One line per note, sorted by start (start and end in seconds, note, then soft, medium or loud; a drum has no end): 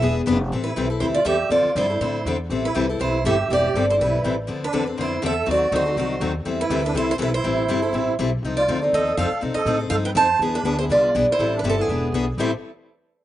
0.00 0.26 E1 medium
0.00 0.20 E3 medium
0.00 0.20 B3 medium
0.00 0.21 D4 medium
0.00 0.21 G#4 medium
0.00 0.14 E5 medium
0.26 0.51 F1 loud
0.26 0.36 E3 loud
0.26 0.37 B3 loud
0.26 0.37 D4 loud
0.26 0.37 G#4 loud
0.52 0.76 A1 medium
0.52 0.70 E3 medium
0.52 0.70 G3 medium
0.52 0.70 C4 medium
0.52 0.70 E4 medium
0.52 0.70 A4 medium
0.64 0.89 E4 medium
0.64 0.88 B4 medium
0.76 1.01 B1 medium
0.76 0.86 E3 medium
0.76 0.87 G3 medium
0.76 0.87 C4 medium
0.76 0.87 E4 medium
0.76 0.87 A4 medium
0.90 1.00 C4 soft
0.90 1.01 E4 medium
0.90 1.00 A4 medium
1.00 1.25 D2 medium
1.00 1.19 E3 medium
1.00 1.19 G3 medium
1.00 1.19 C4 medium
1.00 1.20 E4 medium
1.00 1.08 E4 medium
1.00 1.19 A4 medium
1.00 1.05 C5 medium
1.14 1.25 F4 medium
1.14 1.26 D5 medium
1.25 1.49 E2 medium
1.25 1.35 E3 medium
1.25 1.35 G3 medium
1.25 1.36 C4 medium
1.25 1.36 E4 medium
1.25 1.49 G4 medium
1.25 1.36 A4 medium
1.25 1.49 E5 medium
1.50 1.63 F2 medium
1.50 1.68 D3 medium
1.50 1.69 F3 medium
1.50 1.69 C4 medium
1.50 1.69 D4 medium
1.50 1.75 F4 medium
1.50 1.69 A4 medium
1.50 1.77 D5 medium
1.65 muted upright bass stroke soft
1.75 2.00 G2 medium
1.75 1.86 D3 medium
1.75 1.86 F3 medium
1.75 1.86 C4 medium
1.75 1.86 D4 medium
1.75 1.99 E4 medium
1.75 1.86 A4 medium
1.75 2.00 C5 medium
1.90 2.00 C4 soft
1.90 2.00 D4 soft
1.90 2.00 A4 medium
2.00 2.24 A2 medium
2.00 2.19 D3 medium
2.00 2.19 F3 medium
2.00 2.19 C4 medium
2.00 2.19 D4 medium
2.00 2.36 E4 medium
2.00 2.19 A4 medium
2.00 2.36 C5 medium
2.25 2.49 E2 medium
2.25 2.36 D3 medium
2.25 2.36 F3 medium
2.25 2.36 C4 medium
2.25 2.36 D4 medium
2.25 2.36 A4 medium
2.50 2.74 A1 medium
2.50 2.68 E3 medium
2.50 2.68 G3 medium
2.50 2.68 C4 medium
2.50 2.69 E4 medium
2.50 2.69 A4 medium
2.65 2.87 E4 medium
2.65 2.88 B4 medium
2.75 2.99 C2 medium
2.75 2.85 E3 medium
2.75 2.85 G3 medium
2.75 2.85 C4 medium
2.75 2.85 E4 medium
2.75 2.85 A4 loud
2.89 2.99 C4 soft
2.89 2.99 E4 medium
2.89 2.99 A4 medium
2.99 3.24 B1 medium
2.99 3.17 E3 medium
2.99 3.18 G3 medium
2.99 3.18 C4 medium
2.99 3.18 E4 medium
2.99 3.24 E4 medium
2.99 3.18 A4 medium
2.99 3.23 C5 medium
3.24 3.48 G1 medium
3.24 3.35 E3 medium
3.24 3.35 G3 loud
3.24 3.35 C4 medium
3.24 3.35 E4 medium
3.24 3.48 G4 medium
3.24 3.35 A4 medium
3.24 3.51 E5 loud
3.48 3.73 E1 medium
3.48 3.67 E3 medium
3.48 3.68 G3 medium
3.48 3.68 C4 medium
3.48 3.68 E4 medium
3.48 3.86 G4 medium
3.48 3.68 A4 medium
3.53 3.87 D5 medium
3.74 3.98 G1 medium
3.74 3.85 E3 medium
3.74 3.85 G3 medium
3.74 3.85 C4 medium
3.74 3.85 E4 medium
3.74 3.85 A4 medium
3.90 4.00 C4 soft
3.90 3.95 E4 medium
3.90 4.00 E4 soft
3.90 3.99 A4 soft
3.90 3.95 C5 medium
3.99 4.23 B1 medium
3.99 4.17 E3 medium
3.99 4.18 G3 medium
3.99 4.18 C4 medium
3.99 4.18 E4 medium
3.99 4.37 E4 medium
3.99 4.18 A4 medium
3.99 4.36 B4 medium
4.24 4.47 A1 medium
4.24 4.34 E3 medium
4.24 4.34 G3 medium
4.24 4.34 C4 medium
4.24 4.34 E4 medium
4.24 4.34 A4 medium
4.47 4.72 D2 medium
4.47 4.65 D3 medium
4.47 4.66 F3 medium
4.47 4.66 C4 medium
4.47 4.66 D4 medium
4.47 4.66 A4 medium
4.64 4.86 D4 medium
4.64 4.86 B4 medium
4.73 4.97 E2 medium
4.73 4.83 D3 medium
4.73 4.83 F3 medium
4.73 4.83 C4 medium
4.73 4.83 D4 medium
4.73 4.83 A4 medium
4.86 4.97 C4 soft
4.86 4.97 D4 soft
4.86 4.97 A4 medium
4.97 5.22 F2 medium
4.97 5.15 D3 medium
4.97 5.15 F3 medium
4.97 5.16 C4 medium
4.97 5.16 D4 medium
4.97 5.22 E4 medium
4.97 5.16 A4 medium
4.97 5.22 C5 medium
5.22 5.47 E2 medium
5.22 5.32 D3 medium
5.22 5.32 F3 medium
5.22 5.33 C4 medium
5.22 5.33 D4 loud
5.22 5.33 A4 medium
5.22 5.50 E5 loud
5.26 5.47 A4 medium
5.46 5.71 D#2 medium
5.46 5.64 D#3 medium
5.46 5.64 F#3 medium
5.46 5.65 C4 medium
5.46 5.65 D#4 medium
5.46 5.65 A4 medium
5.51 5.72 F#4 medium
5.51 5.74 D5 medium
5.72 5.96 D2 medium
5.72 5.82 D#3 medium
5.72 5.82 F#3 medium
5.72 5.82 C4 medium
5.72 5.82 D#4 medium
5.72 5.96 F#4 medium
5.72 5.82 A4 medium
5.76 5.97 C5 medium
5.86 5.96 C4 soft
5.86 5.97 D#4 medium
5.86 5.96 A4 medium
5.96 6.20 C2 medium
5.96 6.15 D#3 medium
5.96 6.15 F#3 medium
5.96 6.15 C4 medium
5.96 6.15 D#4 medium
5.96 6.34 F#4 medium
5.96 6.15 A4 medium
5.96 6.34 C5 medium
6.20 6.45 D#2 medium
6.20 6.31 D#3 medium
6.20 6.31 F#3 medium
6.20 6.31 C4 loud
6.20 6.31 D#4 medium
6.20 6.31 A4 medium
6.45 6.69 E2 medium
6.45 6.63 E3 medium
6.45 6.63 G3 medium
6.45 6.64 C4 medium
6.45 6.64 E4 medium
6.45 6.64 A4 medium
6.60 6.83 E4 medium
6.60 6.83 B4 medium
6.70 6.93 D2 medium
6.70 6.81 E3 medium
6.70 6.80 G3 medium
6.70 6.81 C4 medium
6.70 6.81 E4 loud
6.70 6.81 A4 loud
6.83 6.94 C4 soft
6.83 6.95 D4 medium
6.83 6.94 E4 medium
6.83 6.94 A4 medium
6.83 6.96 B4 medium
6.94 7.18 C2 medium
6.94 7.13 E3 medium
6.94 7.13 G3 medium
6.94 7.13 C4 medium
6.94 7.13 E4 medium
6.94 7.07 E4 medium
6.94 7.13 A4 medium
6.94 7.10 C5 loud
7.09 7.14 E4 medium
7.09 7.16 C5 medium
7.18 7.43 B1 medium
7.18 7.29 E3 medium
7.18 7.29 G3 medium
7.18 7.29 C4 medium
7.18 7.29 E4 medium
7.18 7.33 E4 medium
7.18 7.30 A4 loud
7.18 7.34 B4 medium
7.34 8.15 E4 medium
7.34 8.15 C5 medium
7.44 7.68 A1 medium
7.44 7.62 E3 medium
7.44 7.62 G3 medium
7.44 7.62 C4 medium
7.44 7.63 E4 medium
7.44 7.63 A4 medium
7.68 7.92 G1 medium
7.68 7.79 E3 medium
7.68 7.79 G3 medium
7.68 7.80 C4 medium
7.68 7.80 E4 medium
7.68 7.80 A4 medium
7.82 7.93 C4 soft
7.82 7.93 E4 soft
7.82 7.93 A4 medium
7.93 8.18 A1 medium
7.93 8.11 E3 medium
7.93 8.12 G3 medium
7.93 8.12 C4 medium
7.93 8.12 E4 medium
7.93 8.12 A4 medium
8.19 8.42 B1 medium
8.19 8.29 E3 medium
8.19 8.29 G3 medium
8.19 8.29 C4 medium
8.19 8.30 E4 medium
8.19 8.30 A4 medium
8.43 8.67 C2 medium
8.43 8.62 F3 medium
8.43 8.62 C4 medium
8.43 8.62 D#4 medium
8.43 8.62 A4 medium
8.57 8.81 F4 medium
8.57 8.80 D5 medium
8.68 8.92 D2 medium
8.68 8.78 F3 medium
8.68 8.79 C4 medium
8.68 8.79 D#4 medium
8.68 8.79 A4 medium
8.82 8.93 C4 soft
8.82 8.93 D#4 soft
8.82 8.92 A4 soft
8.93 9.17 D#2 medium
8.93 9.11 F3 medium
8.93 9.12 C4 medium
8.93 9.12 D#4 medium
8.93 9.16 A4 medium
8.93 9.12 A4 medium
8.93 9.17 D#5 medium
9.17 9.30 F2 medium
9.17 9.28 F3 medium
9.17 9.28 C4 medium
9.17 9.28 D#4 medium
9.17 9.40 A4 medium
9.17 9.28 A4 loud
9.17 9.41 F5 medium
9.32 muted upright bass stroke soft
9.41 9.55 C3 medium
9.41 9.60 F3 medium
9.41 9.60 C4 medium
9.41 9.60 D#4 medium
9.41 9.60 A4 medium
9.54 9.79 A4 medium
9.54 9.78 D#5 medium
9.54 muted upright bass stroke soft
9.65 9.90 A2 medium
9.65 9.77 F3 medium
9.65 9.77 C4 medium
9.65 9.77 D#4 medium
9.65 9.77 A4 medium
9.79 9.90 C4 soft
9.79 9.90 D#4 soft
9.79 9.90 A4 medium
9.90 10.14 G2 medium
9.90 10.09 F3 medium
9.90 10.09 C4 medium
9.90 10.09 D#4 medium
9.90 9.97 A4 medium
9.90 10.10 A4 medium
9.90 9.95 F5 loud
10.05 10.10 B4 medium
10.05 10.10 G5 medium
10.15 10.39 F2 medium
10.15 10.26 F3 medium
10.15 10.26 C4 medium
10.15 10.26 D#4 loud
10.15 10.26 A4 medium
10.15 10.40 C5 medium
10.15 10.40 A5 loud
10.39 10.63 E2 medium
10.39 10.59 E3 medium
10.39 10.59 B3 medium
10.39 10.60 D4 medium
10.39 10.60 G#4 medium
10.55 10.78 D4 medium
10.55 10.78 B4 medium
10.64 10.89 D2 medium
10.64 10.75 E3 medium
10.64 10.75 B3 medium
10.64 10.76 D4 medium
10.64 10.76 G#4 loud
10.79 10.89 B3 soft
10.79 10.89 D4 soft
10.79 10.86 E4 medium
10.79 10.90 G#4 medium
10.79 10.84 C5 medium
10.89 11.14 C2 medium
10.89 11.08 E3 medium
10.89 11.08 B3 medium
10.89 11.08 D4 medium
10.89 11.14 F4 medium
10.89 11.09 G#4 medium
10.89 11.14 D5 medium
11.15 11.28 B1 medium
11.15 11.25 E3 medium
11.15 11.25 B3 medium
11.15 11.25 D4 medium
11.15 11.26 G#4 loud
11.28 11.53 E4 medium
11.28 11.54 C5 loud
11.28 muted upright bass stroke soft
11.39 11.63 A1 medium
11.39 11.57 E3 medium
11.39 11.58 G3 medium
11.39 11.58 C4 medium
11.39 11.58 E4 medium
11.39 11.58 A4 medium
11.55 11.64 D4 medium
11.59 11.68 B4 medium
11.63 11.88 G1 medium
11.63 11.74 E3 medium
11.63 11.74 G3 medium
11.63 11.75 C4 medium
11.63 11.78 C4 medium
11.63 11.75 E4 medium
11.63 11.75 A4 medium
11.70 11.81 A4 medium
11.78 12.28 B3 medium
11.78 11.89 C4 soft
11.78 11.89 E4 medium
11.78 12.29 G#4 medium
11.78 11.89 A4 medium
11.88 12.12 E1 medium
11.88 12.07 E3 medium
11.88 12.07 B3 medium
11.88 12.08 D4 medium
11.88 12.08 G#4 medium
12.12 12.37 B1 medium
12.12 12.24 E3 medium
12.12 12.24 B3 medium
12.12 12.25 D4 medium
12.12 12.24 G#4 medium
12.38 12.51 A1 medium
12.38 12.49 A2 medium
12.38 12.50 E3 medium
12.38 12.50 G3 medium
12.38 12.50 C4 medium
12.38 12.51 E4 medium
12.38 12.50 E4 loud
12.38 12.50 A4 medium
12.38 12.52 C5 medium